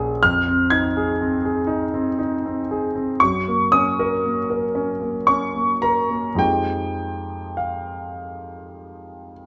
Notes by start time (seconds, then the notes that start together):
Already playing: A#1 A#3 C#4 G#4 D#6
0.23 F2 F6
0.48 C4
0.70 D#4 G#6
0.97 G#4
1.21 C4
1.45 G#4
1.67 D#4
1.94 C4
2.19 D#4
2.46 C4
2.71 G#4
2.96 C4
3.20 F#2 C#6
3.48 A#3
3.72 C#4 D#6
3.99 A#4
4.25 A#3
4.50 A#4
4.75 C#4
5.01 A#3
5.27 C#4 C#6
5.55 A#3
5.82 A#4 A#5
6.10 A#3
6.35 F2 F3 G#3 D#4 G5
6.39 G4
7.57 F5